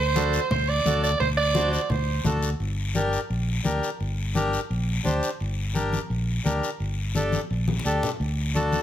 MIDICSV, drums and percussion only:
0, 0, Header, 1, 2, 480
1, 0, Start_track
1, 0, Key_signature, -2, "minor"
1, 0, Tempo, 349854
1, 1655, Time_signature, 4, 2, 24, 8
1, 12112, End_track
2, 0, Start_track
2, 0, Title_t, "Drums"
2, 217, Note_on_c, 9, 73, 72
2, 220, Note_on_c, 9, 63, 87
2, 355, Note_off_c, 9, 73, 0
2, 357, Note_off_c, 9, 63, 0
2, 457, Note_on_c, 9, 73, 70
2, 594, Note_off_c, 9, 73, 0
2, 698, Note_on_c, 9, 63, 35
2, 698, Note_on_c, 9, 64, 93
2, 702, Note_on_c, 9, 74, 73
2, 835, Note_off_c, 9, 63, 0
2, 835, Note_off_c, 9, 64, 0
2, 839, Note_off_c, 9, 74, 0
2, 1174, Note_on_c, 9, 63, 80
2, 1182, Note_on_c, 9, 73, 75
2, 1311, Note_off_c, 9, 63, 0
2, 1319, Note_off_c, 9, 73, 0
2, 1423, Note_on_c, 9, 73, 82
2, 1560, Note_off_c, 9, 73, 0
2, 1650, Note_on_c, 9, 63, 38
2, 1650, Note_on_c, 9, 64, 73
2, 1652, Note_on_c, 9, 74, 79
2, 1788, Note_off_c, 9, 63, 0
2, 1788, Note_off_c, 9, 64, 0
2, 1789, Note_off_c, 9, 74, 0
2, 2124, Note_on_c, 9, 63, 98
2, 2136, Note_on_c, 9, 73, 68
2, 2262, Note_off_c, 9, 63, 0
2, 2274, Note_off_c, 9, 73, 0
2, 2374, Note_on_c, 9, 73, 66
2, 2511, Note_off_c, 9, 73, 0
2, 2604, Note_on_c, 9, 63, 39
2, 2604, Note_on_c, 9, 64, 84
2, 2610, Note_on_c, 9, 74, 74
2, 2742, Note_off_c, 9, 63, 0
2, 2742, Note_off_c, 9, 64, 0
2, 2747, Note_off_c, 9, 74, 0
2, 3081, Note_on_c, 9, 63, 81
2, 3081, Note_on_c, 9, 64, 74
2, 3090, Note_on_c, 9, 73, 67
2, 3218, Note_off_c, 9, 63, 0
2, 3218, Note_off_c, 9, 64, 0
2, 3227, Note_off_c, 9, 73, 0
2, 3326, Note_on_c, 9, 73, 69
2, 3463, Note_off_c, 9, 73, 0
2, 3569, Note_on_c, 9, 74, 69
2, 3706, Note_off_c, 9, 74, 0
2, 4045, Note_on_c, 9, 63, 71
2, 4049, Note_on_c, 9, 73, 64
2, 4182, Note_off_c, 9, 63, 0
2, 4186, Note_off_c, 9, 73, 0
2, 4294, Note_on_c, 9, 73, 59
2, 4431, Note_off_c, 9, 73, 0
2, 4537, Note_on_c, 9, 74, 66
2, 4674, Note_off_c, 9, 74, 0
2, 5004, Note_on_c, 9, 63, 81
2, 5013, Note_on_c, 9, 73, 70
2, 5141, Note_off_c, 9, 63, 0
2, 5150, Note_off_c, 9, 73, 0
2, 5258, Note_on_c, 9, 73, 66
2, 5395, Note_off_c, 9, 73, 0
2, 5495, Note_on_c, 9, 74, 70
2, 5632, Note_off_c, 9, 74, 0
2, 5970, Note_on_c, 9, 63, 80
2, 5980, Note_on_c, 9, 73, 61
2, 6107, Note_off_c, 9, 63, 0
2, 6118, Note_off_c, 9, 73, 0
2, 6221, Note_on_c, 9, 73, 62
2, 6358, Note_off_c, 9, 73, 0
2, 6461, Note_on_c, 9, 74, 68
2, 6598, Note_off_c, 9, 74, 0
2, 6924, Note_on_c, 9, 63, 75
2, 6935, Note_on_c, 9, 73, 67
2, 7061, Note_off_c, 9, 63, 0
2, 7073, Note_off_c, 9, 73, 0
2, 7173, Note_on_c, 9, 73, 69
2, 7310, Note_off_c, 9, 73, 0
2, 7415, Note_on_c, 9, 74, 73
2, 7552, Note_off_c, 9, 74, 0
2, 7892, Note_on_c, 9, 63, 71
2, 7894, Note_on_c, 9, 73, 62
2, 8029, Note_off_c, 9, 63, 0
2, 8031, Note_off_c, 9, 73, 0
2, 8133, Note_on_c, 9, 63, 71
2, 8144, Note_on_c, 9, 73, 58
2, 8270, Note_off_c, 9, 63, 0
2, 8282, Note_off_c, 9, 73, 0
2, 8384, Note_on_c, 9, 74, 64
2, 8521, Note_off_c, 9, 74, 0
2, 8854, Note_on_c, 9, 63, 75
2, 8866, Note_on_c, 9, 73, 64
2, 8991, Note_off_c, 9, 63, 0
2, 9003, Note_off_c, 9, 73, 0
2, 9102, Note_on_c, 9, 73, 72
2, 9240, Note_off_c, 9, 73, 0
2, 9334, Note_on_c, 9, 74, 72
2, 9471, Note_off_c, 9, 74, 0
2, 9808, Note_on_c, 9, 63, 75
2, 9817, Note_on_c, 9, 73, 67
2, 9945, Note_off_c, 9, 63, 0
2, 9954, Note_off_c, 9, 73, 0
2, 10047, Note_on_c, 9, 63, 70
2, 10059, Note_on_c, 9, 73, 59
2, 10184, Note_off_c, 9, 63, 0
2, 10197, Note_off_c, 9, 73, 0
2, 10299, Note_on_c, 9, 74, 62
2, 10436, Note_off_c, 9, 74, 0
2, 10532, Note_on_c, 9, 63, 91
2, 10670, Note_off_c, 9, 63, 0
2, 10693, Note_on_c, 9, 63, 62
2, 10777, Note_on_c, 9, 73, 70
2, 10830, Note_off_c, 9, 63, 0
2, 10914, Note_off_c, 9, 73, 0
2, 11020, Note_on_c, 9, 64, 83
2, 11024, Note_on_c, 9, 73, 67
2, 11157, Note_off_c, 9, 64, 0
2, 11161, Note_off_c, 9, 73, 0
2, 11262, Note_on_c, 9, 74, 76
2, 11399, Note_off_c, 9, 74, 0
2, 11735, Note_on_c, 9, 63, 74
2, 11740, Note_on_c, 9, 73, 65
2, 11872, Note_off_c, 9, 63, 0
2, 11877, Note_off_c, 9, 73, 0
2, 11966, Note_on_c, 9, 63, 70
2, 11973, Note_on_c, 9, 73, 59
2, 12103, Note_off_c, 9, 63, 0
2, 12110, Note_off_c, 9, 73, 0
2, 12112, End_track
0, 0, End_of_file